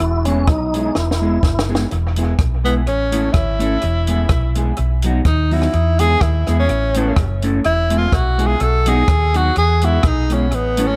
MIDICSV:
0, 0, Header, 1, 6, 480
1, 0, Start_track
1, 0, Time_signature, 4, 2, 24, 8
1, 0, Key_signature, 4, "major"
1, 0, Tempo, 478469
1, 10997, End_track
2, 0, Start_track
2, 0, Title_t, "Tenor saxophone"
2, 0, Program_c, 0, 66
2, 2656, Note_on_c, 0, 59, 83
2, 2755, Note_off_c, 0, 59, 0
2, 2881, Note_on_c, 0, 61, 93
2, 3339, Note_on_c, 0, 64, 91
2, 3354, Note_off_c, 0, 61, 0
2, 4564, Note_off_c, 0, 64, 0
2, 5284, Note_on_c, 0, 63, 88
2, 5546, Note_on_c, 0, 64, 101
2, 5561, Note_off_c, 0, 63, 0
2, 6015, Note_on_c, 0, 68, 118
2, 6030, Note_off_c, 0, 64, 0
2, 6238, Note_on_c, 0, 64, 97
2, 6254, Note_off_c, 0, 68, 0
2, 6604, Note_off_c, 0, 64, 0
2, 6615, Note_on_c, 0, 61, 97
2, 7288, Note_off_c, 0, 61, 0
2, 7679, Note_on_c, 0, 64, 113
2, 8007, Note_on_c, 0, 65, 100
2, 8022, Note_off_c, 0, 64, 0
2, 8167, Note_on_c, 0, 66, 98
2, 8182, Note_off_c, 0, 65, 0
2, 8492, Note_on_c, 0, 68, 95
2, 8507, Note_off_c, 0, 66, 0
2, 8646, Note_on_c, 0, 69, 105
2, 8661, Note_off_c, 0, 68, 0
2, 8913, Note_on_c, 0, 68, 116
2, 8928, Note_off_c, 0, 69, 0
2, 9392, Note_on_c, 0, 66, 103
2, 9408, Note_off_c, 0, 68, 0
2, 9603, Note_off_c, 0, 66, 0
2, 9612, Note_on_c, 0, 68, 110
2, 9880, Note_on_c, 0, 64, 98
2, 9895, Note_off_c, 0, 68, 0
2, 10104, Note_on_c, 0, 63, 94
2, 10119, Note_off_c, 0, 64, 0
2, 10369, Note_on_c, 0, 61, 84
2, 10384, Note_off_c, 0, 63, 0
2, 10579, Note_on_c, 0, 59, 94
2, 10594, Note_off_c, 0, 61, 0
2, 10903, Note_on_c, 0, 61, 98
2, 10918, Note_off_c, 0, 59, 0
2, 10997, Note_off_c, 0, 61, 0
2, 10997, End_track
3, 0, Start_track
3, 0, Title_t, "Tonewheel organ"
3, 0, Program_c, 1, 16
3, 0, Note_on_c, 1, 64, 110
3, 253, Note_on_c, 1, 61, 86
3, 261, Note_off_c, 1, 64, 0
3, 475, Note_on_c, 1, 63, 97
3, 481, Note_off_c, 1, 61, 0
3, 954, Note_on_c, 1, 64, 70
3, 969, Note_off_c, 1, 63, 0
3, 1653, Note_off_c, 1, 64, 0
3, 10997, End_track
4, 0, Start_track
4, 0, Title_t, "Clean electric guitar"
4, 0, Program_c, 2, 27
4, 267, Note_on_c, 2, 56, 76
4, 273, Note_on_c, 2, 59, 94
4, 275, Note_on_c, 2, 64, 89
4, 285, Note_on_c, 2, 68, 100
4, 416, Note_off_c, 2, 56, 0
4, 419, Note_off_c, 2, 59, 0
4, 421, Note_off_c, 2, 64, 0
4, 426, Note_off_c, 2, 68, 0
4, 741, Note_on_c, 2, 56, 80
4, 749, Note_on_c, 2, 59, 80
4, 758, Note_on_c, 2, 64, 83
4, 759, Note_on_c, 2, 68, 83
4, 893, Note_off_c, 2, 56, 0
4, 897, Note_off_c, 2, 59, 0
4, 902, Note_off_c, 2, 64, 0
4, 902, Note_off_c, 2, 68, 0
4, 1216, Note_on_c, 2, 56, 92
4, 1226, Note_on_c, 2, 59, 89
4, 1233, Note_on_c, 2, 64, 84
4, 1233, Note_on_c, 2, 68, 83
4, 1371, Note_off_c, 2, 56, 0
4, 1376, Note_off_c, 2, 59, 0
4, 1379, Note_off_c, 2, 64, 0
4, 1379, Note_off_c, 2, 68, 0
4, 1692, Note_on_c, 2, 56, 69
4, 1700, Note_on_c, 2, 59, 85
4, 1706, Note_on_c, 2, 64, 81
4, 1710, Note_on_c, 2, 68, 80
4, 1849, Note_off_c, 2, 56, 0
4, 1853, Note_off_c, 2, 59, 0
4, 1855, Note_off_c, 2, 64, 0
4, 1858, Note_off_c, 2, 68, 0
4, 2178, Note_on_c, 2, 56, 86
4, 2191, Note_on_c, 2, 64, 82
4, 2192, Note_on_c, 2, 59, 82
4, 2203, Note_on_c, 2, 68, 81
4, 2331, Note_off_c, 2, 56, 0
4, 2338, Note_off_c, 2, 59, 0
4, 2338, Note_off_c, 2, 64, 0
4, 2344, Note_off_c, 2, 68, 0
4, 2647, Note_on_c, 2, 56, 84
4, 2656, Note_on_c, 2, 59, 80
4, 2663, Note_on_c, 2, 64, 104
4, 2668, Note_on_c, 2, 68, 87
4, 2806, Note_off_c, 2, 56, 0
4, 2810, Note_off_c, 2, 59, 0
4, 2813, Note_off_c, 2, 64, 0
4, 2816, Note_off_c, 2, 68, 0
4, 3124, Note_on_c, 2, 57, 84
4, 3132, Note_on_c, 2, 61, 85
4, 3136, Note_on_c, 2, 64, 97
4, 3141, Note_on_c, 2, 69, 88
4, 3284, Note_off_c, 2, 57, 0
4, 3288, Note_off_c, 2, 61, 0
4, 3290, Note_off_c, 2, 64, 0
4, 3292, Note_off_c, 2, 69, 0
4, 3601, Note_on_c, 2, 57, 73
4, 3611, Note_on_c, 2, 61, 75
4, 3617, Note_on_c, 2, 64, 77
4, 3626, Note_on_c, 2, 69, 85
4, 3762, Note_off_c, 2, 57, 0
4, 3767, Note_off_c, 2, 61, 0
4, 3770, Note_off_c, 2, 64, 0
4, 3775, Note_off_c, 2, 69, 0
4, 4092, Note_on_c, 2, 56, 70
4, 4096, Note_on_c, 2, 59, 85
4, 4111, Note_on_c, 2, 64, 83
4, 4112, Note_on_c, 2, 68, 76
4, 4247, Note_off_c, 2, 56, 0
4, 4250, Note_off_c, 2, 59, 0
4, 4257, Note_off_c, 2, 64, 0
4, 4258, Note_off_c, 2, 68, 0
4, 4569, Note_on_c, 2, 56, 74
4, 4579, Note_on_c, 2, 59, 77
4, 4580, Note_on_c, 2, 64, 81
4, 4588, Note_on_c, 2, 68, 97
4, 4726, Note_off_c, 2, 56, 0
4, 4731, Note_off_c, 2, 59, 0
4, 4731, Note_off_c, 2, 64, 0
4, 4735, Note_off_c, 2, 68, 0
4, 5054, Note_on_c, 2, 54, 101
4, 5065, Note_on_c, 2, 59, 82
4, 5073, Note_on_c, 2, 63, 95
4, 5078, Note_on_c, 2, 66, 100
4, 5209, Note_off_c, 2, 54, 0
4, 5214, Note_off_c, 2, 59, 0
4, 5218, Note_off_c, 2, 63, 0
4, 5220, Note_off_c, 2, 66, 0
4, 5527, Note_on_c, 2, 54, 78
4, 5534, Note_on_c, 2, 59, 85
4, 5545, Note_on_c, 2, 63, 88
4, 5546, Note_on_c, 2, 66, 92
4, 5685, Note_off_c, 2, 54, 0
4, 5688, Note_off_c, 2, 59, 0
4, 5694, Note_off_c, 2, 63, 0
4, 5694, Note_off_c, 2, 66, 0
4, 6011, Note_on_c, 2, 56, 76
4, 6024, Note_on_c, 2, 59, 87
4, 6024, Note_on_c, 2, 64, 95
4, 6029, Note_on_c, 2, 68, 92
4, 6167, Note_off_c, 2, 56, 0
4, 6173, Note_off_c, 2, 59, 0
4, 6173, Note_off_c, 2, 64, 0
4, 6176, Note_off_c, 2, 68, 0
4, 6492, Note_on_c, 2, 56, 82
4, 6500, Note_on_c, 2, 59, 94
4, 6504, Note_on_c, 2, 64, 82
4, 6511, Note_on_c, 2, 68, 100
4, 6647, Note_off_c, 2, 56, 0
4, 6651, Note_off_c, 2, 59, 0
4, 6653, Note_off_c, 2, 64, 0
4, 6657, Note_off_c, 2, 68, 0
4, 6980, Note_on_c, 2, 57, 81
4, 6988, Note_on_c, 2, 61, 86
4, 6996, Note_on_c, 2, 64, 98
4, 6999, Note_on_c, 2, 69, 99
4, 7131, Note_off_c, 2, 57, 0
4, 7135, Note_off_c, 2, 61, 0
4, 7139, Note_off_c, 2, 64, 0
4, 7140, Note_off_c, 2, 69, 0
4, 7456, Note_on_c, 2, 57, 79
4, 7464, Note_on_c, 2, 61, 91
4, 7465, Note_on_c, 2, 64, 83
4, 7467, Note_on_c, 2, 69, 87
4, 7609, Note_off_c, 2, 57, 0
4, 7613, Note_off_c, 2, 61, 0
4, 7613, Note_off_c, 2, 64, 0
4, 7614, Note_off_c, 2, 69, 0
4, 7926, Note_on_c, 2, 56, 88
4, 7935, Note_on_c, 2, 59, 84
4, 7943, Note_on_c, 2, 64, 74
4, 7949, Note_on_c, 2, 68, 79
4, 8084, Note_off_c, 2, 56, 0
4, 8088, Note_off_c, 2, 59, 0
4, 8093, Note_off_c, 2, 64, 0
4, 8095, Note_off_c, 2, 68, 0
4, 8406, Note_on_c, 2, 56, 78
4, 8413, Note_on_c, 2, 59, 95
4, 8418, Note_on_c, 2, 64, 93
4, 8425, Note_on_c, 2, 68, 104
4, 8564, Note_off_c, 2, 56, 0
4, 8567, Note_off_c, 2, 59, 0
4, 8570, Note_off_c, 2, 64, 0
4, 8574, Note_off_c, 2, 68, 0
4, 8886, Note_on_c, 2, 54, 85
4, 8898, Note_on_c, 2, 59, 90
4, 8903, Note_on_c, 2, 63, 101
4, 8911, Note_on_c, 2, 66, 100
4, 9044, Note_off_c, 2, 54, 0
4, 9050, Note_off_c, 2, 59, 0
4, 9053, Note_off_c, 2, 63, 0
4, 9056, Note_off_c, 2, 66, 0
4, 9369, Note_on_c, 2, 54, 76
4, 9372, Note_on_c, 2, 59, 74
4, 9379, Note_on_c, 2, 63, 77
4, 9386, Note_on_c, 2, 66, 96
4, 9525, Note_off_c, 2, 54, 0
4, 9527, Note_off_c, 2, 59, 0
4, 9530, Note_off_c, 2, 63, 0
4, 9534, Note_off_c, 2, 66, 0
4, 9855, Note_on_c, 2, 56, 76
4, 9862, Note_on_c, 2, 59, 80
4, 9868, Note_on_c, 2, 64, 84
4, 9881, Note_on_c, 2, 68, 87
4, 10008, Note_off_c, 2, 56, 0
4, 10012, Note_off_c, 2, 59, 0
4, 10015, Note_off_c, 2, 64, 0
4, 10021, Note_off_c, 2, 68, 0
4, 10330, Note_on_c, 2, 56, 86
4, 10339, Note_on_c, 2, 59, 96
4, 10350, Note_on_c, 2, 64, 88
4, 10354, Note_on_c, 2, 68, 99
4, 10486, Note_off_c, 2, 56, 0
4, 10490, Note_off_c, 2, 59, 0
4, 10496, Note_off_c, 2, 64, 0
4, 10498, Note_off_c, 2, 68, 0
4, 10809, Note_on_c, 2, 57, 90
4, 10818, Note_on_c, 2, 61, 84
4, 10820, Note_on_c, 2, 64, 94
4, 10831, Note_on_c, 2, 69, 94
4, 10966, Note_off_c, 2, 57, 0
4, 10970, Note_off_c, 2, 61, 0
4, 10971, Note_off_c, 2, 64, 0
4, 10976, Note_off_c, 2, 69, 0
4, 10997, End_track
5, 0, Start_track
5, 0, Title_t, "Fingered electric bass"
5, 0, Program_c, 3, 33
5, 0, Note_on_c, 3, 28, 106
5, 484, Note_off_c, 3, 28, 0
5, 484, Note_on_c, 3, 35, 96
5, 888, Note_off_c, 3, 35, 0
5, 964, Note_on_c, 3, 28, 89
5, 1368, Note_off_c, 3, 28, 0
5, 1439, Note_on_c, 3, 30, 91
5, 1845, Note_off_c, 3, 30, 0
5, 1926, Note_on_c, 3, 28, 106
5, 2329, Note_off_c, 3, 28, 0
5, 2399, Note_on_c, 3, 35, 93
5, 2883, Note_off_c, 3, 35, 0
5, 2883, Note_on_c, 3, 33, 93
5, 3287, Note_off_c, 3, 33, 0
5, 3357, Note_on_c, 3, 32, 91
5, 3763, Note_off_c, 3, 32, 0
5, 3845, Note_on_c, 3, 28, 109
5, 4247, Note_off_c, 3, 28, 0
5, 4314, Note_on_c, 3, 35, 81
5, 4721, Note_off_c, 3, 35, 0
5, 4803, Note_on_c, 3, 35, 97
5, 5206, Note_off_c, 3, 35, 0
5, 5273, Note_on_c, 3, 39, 102
5, 5681, Note_off_c, 3, 39, 0
5, 5756, Note_on_c, 3, 40, 127
5, 6162, Note_off_c, 3, 40, 0
5, 6238, Note_on_c, 3, 39, 100
5, 6456, Note_off_c, 3, 39, 0
5, 6500, Note_on_c, 3, 40, 83
5, 6684, Note_off_c, 3, 40, 0
5, 6718, Note_on_c, 3, 33, 102
5, 7123, Note_off_c, 3, 33, 0
5, 7193, Note_on_c, 3, 30, 96
5, 7601, Note_off_c, 3, 30, 0
5, 7676, Note_on_c, 3, 28, 99
5, 8082, Note_off_c, 3, 28, 0
5, 8154, Note_on_c, 3, 35, 102
5, 8561, Note_off_c, 3, 35, 0
5, 8636, Note_on_c, 3, 35, 99
5, 9042, Note_off_c, 3, 35, 0
5, 9113, Note_on_c, 3, 39, 99
5, 9521, Note_off_c, 3, 39, 0
5, 9599, Note_on_c, 3, 40, 114
5, 10004, Note_off_c, 3, 40, 0
5, 10072, Note_on_c, 3, 35, 99
5, 10562, Note_off_c, 3, 35, 0
5, 10562, Note_on_c, 3, 33, 92
5, 10965, Note_off_c, 3, 33, 0
5, 10997, End_track
6, 0, Start_track
6, 0, Title_t, "Drums"
6, 0, Note_on_c, 9, 42, 77
6, 98, Note_off_c, 9, 42, 0
6, 251, Note_on_c, 9, 42, 93
6, 351, Note_off_c, 9, 42, 0
6, 475, Note_on_c, 9, 42, 75
6, 476, Note_on_c, 9, 37, 122
6, 477, Note_on_c, 9, 36, 112
6, 575, Note_off_c, 9, 42, 0
6, 576, Note_off_c, 9, 37, 0
6, 577, Note_off_c, 9, 36, 0
6, 739, Note_on_c, 9, 42, 90
6, 840, Note_off_c, 9, 42, 0
6, 954, Note_on_c, 9, 38, 53
6, 1054, Note_off_c, 9, 38, 0
6, 1115, Note_on_c, 9, 38, 62
6, 1216, Note_off_c, 9, 38, 0
6, 1435, Note_on_c, 9, 36, 114
6, 1435, Note_on_c, 9, 38, 66
6, 1535, Note_off_c, 9, 36, 0
6, 1536, Note_off_c, 9, 38, 0
6, 1593, Note_on_c, 9, 38, 92
6, 1694, Note_off_c, 9, 38, 0
6, 1756, Note_on_c, 9, 38, 86
6, 1856, Note_off_c, 9, 38, 0
6, 1917, Note_on_c, 9, 42, 72
6, 2017, Note_off_c, 9, 42, 0
6, 2168, Note_on_c, 9, 42, 95
6, 2269, Note_off_c, 9, 42, 0
6, 2394, Note_on_c, 9, 42, 69
6, 2395, Note_on_c, 9, 36, 120
6, 2395, Note_on_c, 9, 37, 102
6, 2494, Note_off_c, 9, 42, 0
6, 2495, Note_off_c, 9, 36, 0
6, 2495, Note_off_c, 9, 37, 0
6, 2662, Note_on_c, 9, 42, 92
6, 2762, Note_off_c, 9, 42, 0
6, 2877, Note_on_c, 9, 42, 70
6, 2977, Note_off_c, 9, 42, 0
6, 3131, Note_on_c, 9, 42, 109
6, 3231, Note_off_c, 9, 42, 0
6, 3347, Note_on_c, 9, 42, 81
6, 3349, Note_on_c, 9, 37, 105
6, 3352, Note_on_c, 9, 36, 124
6, 3448, Note_off_c, 9, 42, 0
6, 3450, Note_off_c, 9, 37, 0
6, 3452, Note_off_c, 9, 36, 0
6, 3612, Note_on_c, 9, 42, 86
6, 3712, Note_off_c, 9, 42, 0
6, 3827, Note_on_c, 9, 42, 77
6, 3928, Note_off_c, 9, 42, 0
6, 4084, Note_on_c, 9, 42, 96
6, 4184, Note_off_c, 9, 42, 0
6, 4304, Note_on_c, 9, 42, 68
6, 4305, Note_on_c, 9, 37, 102
6, 4308, Note_on_c, 9, 36, 111
6, 4404, Note_off_c, 9, 42, 0
6, 4405, Note_off_c, 9, 37, 0
6, 4409, Note_off_c, 9, 36, 0
6, 4566, Note_on_c, 9, 42, 82
6, 4667, Note_off_c, 9, 42, 0
6, 4780, Note_on_c, 9, 42, 65
6, 4881, Note_off_c, 9, 42, 0
6, 5038, Note_on_c, 9, 42, 101
6, 5138, Note_off_c, 9, 42, 0
6, 5266, Note_on_c, 9, 42, 69
6, 5268, Note_on_c, 9, 36, 120
6, 5268, Note_on_c, 9, 37, 92
6, 5366, Note_off_c, 9, 42, 0
6, 5368, Note_off_c, 9, 36, 0
6, 5368, Note_off_c, 9, 37, 0
6, 5529, Note_on_c, 9, 46, 54
6, 5629, Note_off_c, 9, 46, 0
6, 5635, Note_on_c, 9, 37, 69
6, 5735, Note_off_c, 9, 37, 0
6, 5752, Note_on_c, 9, 42, 78
6, 5852, Note_off_c, 9, 42, 0
6, 6007, Note_on_c, 9, 42, 95
6, 6108, Note_off_c, 9, 42, 0
6, 6230, Note_on_c, 9, 42, 74
6, 6231, Note_on_c, 9, 36, 112
6, 6232, Note_on_c, 9, 37, 109
6, 6331, Note_off_c, 9, 42, 0
6, 6332, Note_off_c, 9, 36, 0
6, 6332, Note_off_c, 9, 37, 0
6, 6489, Note_on_c, 9, 37, 62
6, 6492, Note_on_c, 9, 42, 82
6, 6589, Note_off_c, 9, 37, 0
6, 6593, Note_off_c, 9, 42, 0
6, 6710, Note_on_c, 9, 42, 68
6, 6811, Note_off_c, 9, 42, 0
6, 6966, Note_on_c, 9, 42, 120
6, 7066, Note_off_c, 9, 42, 0
6, 7185, Note_on_c, 9, 42, 80
6, 7187, Note_on_c, 9, 37, 107
6, 7189, Note_on_c, 9, 36, 126
6, 7286, Note_off_c, 9, 42, 0
6, 7287, Note_off_c, 9, 37, 0
6, 7289, Note_off_c, 9, 36, 0
6, 7445, Note_on_c, 9, 42, 88
6, 7546, Note_off_c, 9, 42, 0
6, 7667, Note_on_c, 9, 42, 75
6, 7767, Note_off_c, 9, 42, 0
6, 7926, Note_on_c, 9, 42, 99
6, 8026, Note_off_c, 9, 42, 0
6, 8150, Note_on_c, 9, 36, 114
6, 8151, Note_on_c, 9, 42, 68
6, 8153, Note_on_c, 9, 37, 121
6, 8250, Note_off_c, 9, 36, 0
6, 8252, Note_off_c, 9, 42, 0
6, 8253, Note_off_c, 9, 37, 0
6, 8414, Note_on_c, 9, 42, 83
6, 8514, Note_off_c, 9, 42, 0
6, 8626, Note_on_c, 9, 42, 67
6, 8726, Note_off_c, 9, 42, 0
6, 8885, Note_on_c, 9, 42, 116
6, 8985, Note_off_c, 9, 42, 0
6, 9107, Note_on_c, 9, 42, 81
6, 9109, Note_on_c, 9, 36, 127
6, 9109, Note_on_c, 9, 37, 106
6, 9207, Note_off_c, 9, 42, 0
6, 9209, Note_off_c, 9, 36, 0
6, 9209, Note_off_c, 9, 37, 0
6, 9371, Note_on_c, 9, 42, 90
6, 9471, Note_off_c, 9, 42, 0
6, 9587, Note_on_c, 9, 42, 78
6, 9687, Note_off_c, 9, 42, 0
6, 9845, Note_on_c, 9, 42, 95
6, 9946, Note_off_c, 9, 42, 0
6, 10063, Note_on_c, 9, 42, 72
6, 10064, Note_on_c, 9, 37, 110
6, 10069, Note_on_c, 9, 36, 107
6, 10163, Note_off_c, 9, 42, 0
6, 10164, Note_off_c, 9, 37, 0
6, 10169, Note_off_c, 9, 36, 0
6, 10330, Note_on_c, 9, 42, 89
6, 10431, Note_off_c, 9, 42, 0
6, 10549, Note_on_c, 9, 42, 68
6, 10649, Note_off_c, 9, 42, 0
6, 10805, Note_on_c, 9, 42, 122
6, 10905, Note_off_c, 9, 42, 0
6, 10997, End_track
0, 0, End_of_file